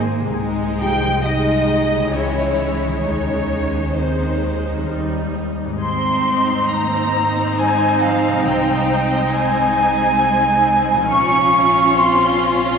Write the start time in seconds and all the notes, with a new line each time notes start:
Already playing: G#1 G#2 G#3 A#3 D#4 C5
0.21 C3
0.25 G#3
0.29 D#4
0.34 G#3 D#4 G#4
0.38 C2 G#3
0.81 F3 G4 G5
1.24 G3 G#3 D#4 D#5
1.67 G#3
1.95 C#3
1.99 G#3
2.04 E4
2.08 G#4
2.13 C#2 E3 G#3 C#4 E4 C#5
2.85 D#3
2.90 G#3
2.94 D#4
2.99 C#4 G#4 C#5
3.03 D#2 D#3 G#3 D#4 C#5
3.97 G#3 C4 D#4 C5
4.73 D#3
4.78 G3
4.82 D#4
4.86 D#2 A#4
4.92 G3 D#4
5.65 G#2
5.69 G#3
5.73 D#4
5.78 G#1 C4 G#4 C5 C6
5.82 C4 D#4
6.70 A#3 A#5
7.59 G#3 G#5
8.02 F3 F5
8.28 C3
8.32 G#3
8.37 D#4
8.41 C2 C3 G3 G#4 G5
9.31 G#3 G#5
10.92 A#2
10.97 F3
11.01 F4
11.06 A#1 C#4 F4 A#4 C#6
11.11 F5 C#6
11.96 C4 C6